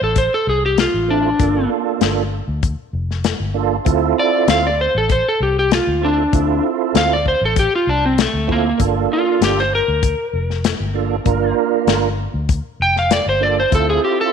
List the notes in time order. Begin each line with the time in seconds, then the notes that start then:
0.01 A1 A4
0.16 C5, kick, closed hi-hat
0.34 A4
0.47 C2 G#4
0.66 G4
0.78 F4, snare, closed hi-hat
0.94 A1
1.08 A3 C4 D4 E4 F4
1.39 G1 A#3 D4 F4 A4, kick, closed hi-hat
2.01 G1, snare, closed hi-hat
2.48 D2
2.63 kick, closed hi-hat
2.93 F1
3.11 snare
3.24 snare, closed hi-hat
3.40 G1
3.54 A#3 D4 F4 A4
3.85 D2 C4 E4 F4 A4, kick, closed hi-hat
4.19 D5
4.48 D2 F5, snare, closed hi-hat
4.67 D5
4.81 C5
4.95 A1 A4
5.09 C5, kick, closed hi-hat
5.29 A4
5.40 C2 G4
5.59 G4
5.71 F4, snare, closed hi-hat
5.87 D2
6.01 C4 D4 E4 F4 A4
6.32 D2 C4 E4 F4 A4, kick, closed hi-hat
6.94 D2 F5, snare, closed hi-hat
7.13 D5
7.26 C5, kick
7.41 A1
7.45 A4
7.56 G4, kick, closed hi-hat
7.75 F4
7.87 C2 D4
8.06 C4
8.18 A3, snare, closed hi-hat
8.34 D2
8.48 C4 E4 F4 A4, kick
8.52 A#3
8.78 G1 A#3 D4 F4 A4, kick, closed hi-hat
9.13 F4
9.41 G1 G4, snare, closed hi-hat
9.58 C5, snare
9.75 A#4
9.88 D2
10.03 kick, closed hi-hat
10.33 F1
10.50 snare
10.64 snare, closed hi-hat
10.80 G1
10.94 A#3 D4 F4 A4
11.25 G1 A#3 D4 F4 A#4, kick, closed hi-hat
11.87 G1, snare, closed hi-hat
12.34 D2
12.49 kick, closed hi-hat
12.80 F1 G5
12.96 F5, snare
13.11 D5, snare, closed hi-hat
13.26 G1 C5
13.40 A#3 D4 F4 A4 D5
13.60 C5
13.71 D2 C4 E4 F4 A4, kick, closed hi-hat
13.75 A4
13.90 G#4
14.05 G4
14.21 A4